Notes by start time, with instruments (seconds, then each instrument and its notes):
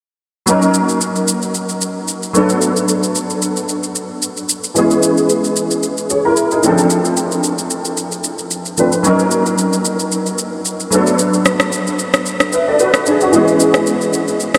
0.46 grand piano F#3 A#3 C#4 D#4 A#4, shaker
0.62 shaker
0.74 shaker
0.89 shaker
1.01 shaker
1.16 shaker
1.28 shaker
1.42 shaker
1.54 shaker
1.69 shaker
1.81 shaker
2.08 shaker
2.23 shaker
2.33 grand piano F#3 A3 B3 D4 A4, shaker
2.49 shaker
2.62 shaker
2.76 shaker
2.88 shaker
3.03 shaker
3.15 shaker
3.30 shaker
3.42 shaker
3.57 shaker
3.69 shaker
3.83 shaker
3.95 shaker
4.22 shaker
4.37 shaker
4.49 shaker
4.64 shaker
4.74 grand piano E3 G#3 B3 C#4 G#4, shaker
4.91 shaker
5.03 shaker
5.17 shaker
5.29 shaker
5.44 shaker
5.56 shaker
5.71 shaker
5.83 shaker
5.98 shaker
6.10 grand piano G#4 C#5, shaker
6.25 grand piano E4 A#4
6.37 shaker
6.51 grand piano D#4 G#4, shaker
6.62 grand piano E3 A3 C4 D4, shaker
6.66 grand piano F3 A4
6.78 shaker
6.90 shaker
7.05 shaker
7.17 shaker
7.32 shaker
7.44 shaker
7.58 shaker
7.70 shaker
7.85 shaker
7.97 shaker
8.12 shaker
8.24 shaker
8.39 shaker
8.51 shaker
8.65 shaker
8.77 grand piano F3 A3 C4 D4 B4, shaker
8.92 shaker
9.03 grand piano F#3 A#3 C#4 D#4 A#4, shaker
9.19 shaker
9.31 shaker
9.46 shaker
9.58 shaker
9.73 shaker
9.85 shaker
9.99 shaker
10.12 shaker
10.26 shaker
10.38 shaker
10.65 shaker
10.80 shaker
10.90 grand piano F#3 A3 B3 D4, shaker
10.94 grand piano A4
11.07 shaker
11.19 shaker
11.34 shaker
11.45 cross-stick, shaker
11.60 cross-stick, shaker
11.72 shaker
11.87 shaker
11.99 shaker
12.14 cross-stick, shaker
12.26 shaker
12.40 cross-stick, shaker
12.53 grand piano B4 E5, shaker
12.68 grand piano A4 D5
12.79 grand piano F#4 B4, shaker
12.94 cross-stick, shaker
13.06 grand piano D4 G#4, shaker
13.21 grand piano C#4 F#4, shaker
13.32 grand piano E3 G#3 B3 C#4 G#4, shaker
13.48 shaker
13.60 shaker
13.74 cross-stick, shaker
13.87 shaker
14.01 shaker
14.13 shaker
14.28 shaker
14.40 shaker
14.54 cross-stick, shaker